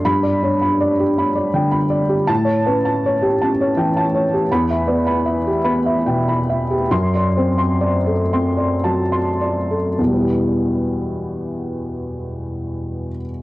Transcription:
0.05 2.26 G2 medium
0.05 0.35 B5 medium
0.23 0.53 D5 soft
0.43 1.02 D4 soft
0.43 0.61 C#5 soft
0.61 0.91 B5 soft
0.80 1.10 D5 medium
0.99 1.28 G4 soft
1.18 1.77 D4 soft
1.18 1.47 B5 soft
1.35 1.65 D5 soft
1.53 2.14 D3 soft
1.53 1.84 G5 soft
1.71 2.02 B5 soft
1.90 2.21 D5 soft
2.09 2.28 G4 soft
2.27 4.44 A2 medium
2.27 2.58 A5 medium
2.45 2.76 C#5 soft
2.66 3.26 C#4 soft
2.66 2.85 B4 soft
2.85 3.15 A5 soft
3.06 3.34 C#5 soft
3.22 3.51 G4 soft
3.42 3.99 C#4 soft
3.42 3.70 A5 soft
3.61 3.88 C#5 soft
3.77 4.34 E3 soft
3.77 4.05 G5 medium
3.97 4.24 A5 medium
4.15 4.42 C#5 soft
4.33 4.50 G4 soft
4.52 6.88 E2 medium
4.52 4.80 B5 medium
4.70 4.99 E5 soft
4.87 5.48 B3 soft
4.87 5.05 D5 soft
5.07 5.37 B5 soft
5.26 5.56 E5 soft
5.47 5.77 G4 soft
5.64 6.30 B3 soft
5.64 5.96 B5 medium
5.86 6.18 E5 soft
6.06 6.74 B2 soft
6.06 6.39 G5 soft
6.28 6.61 B5 soft
6.50 6.83 E5 soft
6.70 6.91 G4 soft
6.91 9.94 F#2 medium
6.91 7.26 C6 medium
7.15 7.50 D5 soft
7.37 8.12 C4 soft
7.37 7.59 C5 soft
7.58 7.96 C6 soft
7.81 8.20 D5 soft
8.07 8.47 A4 soft
8.33 9.17 C4 soft
8.33 8.74 C6 soft
8.57 9.00 D5 soft
8.84 9.75 F#3 soft
8.84 9.28 A5 soft
9.12 9.58 C6 soft
9.41 9.87 D5 soft
9.71 9.99 A4 soft
9.98 13.06 E2 soft
10.03 13.11 B2 soft
10.07 13.15 G3 soft
10.12 13.20 B3 soft
10.12 13.24 E4 soft
10.21 13.28 G4 soft

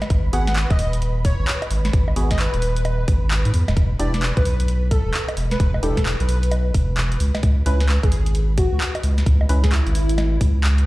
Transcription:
0.00 10.86 B4 medium
0.00 10.86 B5 medium
0.00 snare medium
0.00 closed hi-hat soft
0.00 high bongo medium
0.10 0.30 G#1 loud
0.10 kick loud
0.10 closed hi-hat medium
0.33 0.66 G#1 medium
0.33 0.47 B3 medium
0.33 0.47 F#4 medium
0.33 0.47 G#4 medium
0.33 0.42 F#5 medium
0.33 open hi-hat loud
0.47 0.53 F#5 medium
0.47 snare medium
0.47 closed hi-hat medium
0.56 clap loud
0.70 1.35 D#1 medium
0.70 0.76 D#5 medium
0.70 kick loud
0.70 closed hi-hat soft
0.79 0.88 D#5 medium
0.79 open hi-hat medium
0.93 closed hi-hat medium
1.02 closed hi-hat medium
1.25 1.34 C#5 medium
1.25 kick loud
1.25 open hi-hat loud
1.39 1.46 G#1 loud
1.39 1.45 C#5 medium
1.48 clap loud
1.62 closed hi-hat soft
1.62 high bongo medium
1.71 1.90 G#1 medium
1.71 open hi-hat medium
1.85 snare medium
1.85 closed hi-hat soft
1.93 2.13 G#1 loud
1.93 kick loud
1.93 closed hi-hat medium
2.08 high bongo medium
2.16 2.49 G#1 medium
2.16 2.30 B3 medium
2.16 2.30 F#4 medium
2.16 2.30 G#4 medium
2.16 open hi-hat loud
2.31 2.38 D#5 medium
2.31 kick medium
2.31 snare medium
2.31 closed hi-hat medium
2.39 3.05 B4 loud
2.39 clap loud
2.54 3.05 D#1 medium
2.54 closed hi-hat soft
2.62 open hi-hat medium
2.77 closed hi-hat medium
2.85 closed hi-hat medium
2.85 high bongo medium
3.08 3.45 G#1 loud
3.08 kick loud
3.08 open hi-hat loud
3.31 clap loud
3.45 3.52 G#2 medium
3.45 closed hi-hat soft
3.54 3.65 E2 loud
3.54 open hi-hat medium
3.68 3.75 D1 medium
3.68 snare medium
3.68 closed hi-hat soft
3.68 high bongo medium
3.77 3.96 E1 loud
3.77 kick loud
3.77 closed hi-hat medium
3.99 4.32 E1 medium
3.99 4.13 D4 medium
3.99 4.13 E4 medium
3.99 4.13 G4 medium
3.99 4.09 D5 medium
3.99 open hi-hat loud
4.14 4.19 D5 medium
4.14 snare medium
4.14 closed hi-hat medium
4.23 clap loud
4.37 5.01 B1 medium
4.37 4.42 B4 medium
4.37 kick loud
4.37 closed hi-hat soft
4.45 4.55 B4 medium
4.45 open hi-hat medium
4.60 closed hi-hat medium
4.68 closed hi-hat medium
4.91 5.00 A4 medium
4.91 kick loud
4.91 open hi-hat loud
5.06 5.12 E1 loud
5.06 5.11 A4 medium
5.14 clap loud
5.28 closed hi-hat soft
5.28 high bongo medium
5.37 5.57 E1 medium
5.37 open hi-hat medium
5.51 5.57 B4 medium
5.51 snare soft
5.51 closed hi-hat soft
5.60 5.80 E1 loud
5.60 5.69 B4 medium
5.60 kick loud
5.60 closed hi-hat medium
5.74 high bongo medium
5.83 6.16 E1 medium
5.83 5.96 D4 medium
5.83 5.97 E4 medium
5.83 5.96 G4 medium
5.83 6.01 A4 medium
5.83 open hi-hat loud
5.97 kick medium
5.97 snare medium
5.97 closed hi-hat medium
6.06 clap loud
6.20 6.72 B1 medium
6.20 6.51 B4 medium
6.20 closed hi-hat soft
6.29 open hi-hat medium
6.43 closed hi-hat medium
6.52 closed hi-hat medium
6.52 high bongo medium
6.74 7.18 E1 loud
6.74 kick medium
6.74 open hi-hat loud
6.97 clap loud
7.12 closed hi-hat medium
7.20 7.32 C#2 medium
7.20 open hi-hat medium
7.35 snare medium
7.35 closed hi-hat soft
7.35 high bongo medium
7.43 7.63 C#2 loud
7.43 kick loud
7.43 closed hi-hat medium
7.66 7.99 C#2 medium
7.66 7.80 C#4 medium
7.66 7.80 E4 medium
7.66 7.80 B4 medium
7.66 7.75 B4 medium
7.66 open hi-hat loud
7.80 7.86 B4 medium
7.80 snare medium
7.80 closed hi-hat medium
7.89 clap loud
8.03 8.68 G#1 medium
8.03 8.09 G#4 medium
8.03 kick loud
8.03 closed hi-hat soft
8.12 8.21 G#4 medium
8.12 open hi-hat medium
8.26 closed hi-hat medium
8.35 closed hi-hat medium
8.58 8.67 F#4 medium
8.58 kick medium
8.58 open hi-hat loud
8.72 8.79 C#2 loud
8.72 8.78 F#4 medium
8.81 clap loud
8.95 closed hi-hat medium
8.95 high bongo medium
9.03 9.23 C#2 medium
9.03 open hi-hat medium
9.18 snare soft
9.18 closed hi-hat soft
9.26 9.46 C#2 medium
9.26 kick loud
9.26 closed hi-hat medium
9.41 high bongo medium
9.49 9.82 C#2 medium
9.49 9.63 C#4 medium
9.49 9.63 E4 medium
9.49 9.63 B4 medium
9.49 open hi-hat loud
9.64 9.70 G#4 medium
9.64 kick medium
9.64 snare medium
9.64 closed hi-hat medium
9.72 10.37 E4 loud
9.72 clap loud
9.87 10.38 G#1 medium
9.87 closed hi-hat soft
9.95 open hi-hat loud
10.09 closed hi-hat medium
10.18 snare medium
10.18 closed hi-hat medium
10.18 high bongo medium
10.41 10.84 C#2 loud
10.41 kick medium
10.41 open hi-hat loud
10.64 clap loud
10.78 closed hi-hat medium

